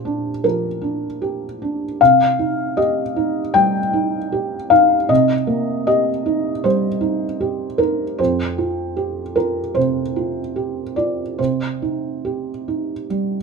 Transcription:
0.00 0.41 A#2 soft
0.00 0.05 D4 soft
0.00 0.29 G4 soft
0.00 0.45 C5 medium
0.05 0.67 D4 soft
0.44 1.05 F3 soft
0.44 2.00 A#4 medium
0.81 1.43 D4 soft
1.22 1.85 G4 soft
1.62 2.01 D4 soft
2.01 3.51 C3 soft
2.01 2.78 F5 medium
2.39 3.00 D#4 soft
2.77 3.39 G4 soft
2.77 3.54 D#5 medium
3.16 3.78 D#4 soft
3.54 4.17 G3 soft
3.54 4.71 G5 medium
3.93 4.56 D#4 soft
4.32 4.94 G4 soft
4.70 5.33 D#4 soft
4.70 5.09 F5 medium
5.09 6.60 C3 soft
5.09 5.85 D#5 medium
5.47 6.10 A#3 soft
5.87 6.49 G4 soft
5.87 6.64 D#5 medium
6.26 6.87 D#4 soft
6.64 7.26 G3 soft
6.64 7.80 C5 medium
7.01 7.64 D#4 soft
7.40 8.03 G4 soft
7.78 8.19 D#4 soft
7.78 8.18 A#4 medium
8.19 9.72 F2 soft
8.19 9.36 C5 medium
8.58 9.21 F4 soft
8.97 9.60 G4 soft
9.36 10.00 F4 soft
9.36 9.76 A#4 medium
9.75 10.40 C3 soft
9.75 10.96 C5 medium
10.16 10.80 F4 soft
10.56 11.22 G4 soft
10.96 11.39 F4 soft
10.96 11.38 D5 soft
11.39 13.04 C3 soft
11.39 13.43 C5 soft
11.82 12.49 D#4 soft
12.25 12.92 G4 soft
12.68 13.35 D#4 soft
13.10 13.43 G3 soft

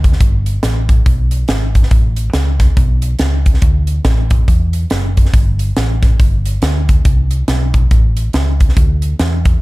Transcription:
0.00 0.14 D2 loud
0.04 kick medium
0.04 closed hi-hat medium
0.12 snare soft
0.21 0.57 G1 loud
0.21 kick loud
0.21 closed hi-hat loud
0.46 closed hi-hat medium
0.63 0.99 A1 medium
0.63 snare loud
0.63 closed hi-hat medium
0.89 kick loud
0.89 closed hi-hat medium
1.06 1.42 B1 loud
1.06 kick loud
1.06 closed hi-hat medium
1.31 closed hi-hat medium
1.48 1.85 G#1 medium
1.48 snare loud
1.48 closed hi-hat medium
1.75 kick medium
1.75 closed hi-hat medium
1.83 snare soft
1.91 2.28 A1 loud
1.91 kick loud
1.91 closed hi-hat medium
2.16 closed hi-hat medium
2.33 2.70 C#2 loud
2.33 snare loud
2.33 closed hi-hat medium
2.59 kick loud
2.59 snare soft
2.59 closed hi-hat medium
2.77 3.13 B1 loud
2.77 kick loud
2.77 closed hi-hat medium
3.02 closed hi-hat medium
3.19 3.56 C#2 medium
3.19 snare loud
3.19 closed hi-hat medium
3.46 kick medium
3.46 closed hi-hat medium
3.54 snare soft
3.62 3.99 D2 loud
3.62 kick loud
3.62 closed hi-hat loud
3.87 closed hi-hat medium
4.05 4.41 A1 loud
4.05 kick loud
4.05 snare loud
4.05 closed hi-hat loud
4.30 kick loud
4.30 closed hi-hat medium
4.48 4.84 E2 loud
4.48 kick loud
4.48 closed hi-hat medium
4.73 closed hi-hat medium
4.90 5.27 F#1 medium
4.90 snare loud
4.90 closed hi-hat medium
5.17 kick medium
5.17 closed hi-hat medium
5.25 snare soft
5.34 5.70 G1 loud
5.34 kick loud
5.34 closed hi-hat medium
5.59 closed hi-hat medium
5.77 6.13 A1 medium
5.77 snare loud
5.77 closed hi-hat medium
6.03 kick loud
6.03 snare soft
6.03 closed hi-hat medium
6.20 6.56 G1 loud
6.20 kick loud
6.20 closed hi-hat medium
6.46 closed hi-hat medium
6.62 6.98 D2 loud
6.62 snare loud
6.62 closed hi-hat medium
6.89 kick loud
6.89 closed hi-hat medium
7.05 7.42 C2 loud
7.05 kick loud
7.05 closed hi-hat loud
7.31 closed hi-hat medium
7.48 7.84 B1 medium
7.48 snare loud
7.48 closed hi-hat loud
7.74 kick loud
7.74 closed hi-hat medium
7.91 8.27 A1 loud
7.91 kick loud
7.91 closed hi-hat medium
8.17 closed hi-hat medium
8.33 8.70 C#2 loud
8.33 snare loud
8.33 closed hi-hat medium
8.60 kick medium
8.60 closed hi-hat medium
8.69 snare soft
8.77 9.13 D2 loud
8.77 kick loud
8.77 closed hi-hat loud
9.02 closed hi-hat medium
9.19 9.56 E2 loud
9.19 snare loud
9.19 closed hi-hat medium
9.45 kick loud
9.45 closed hi-hat medium

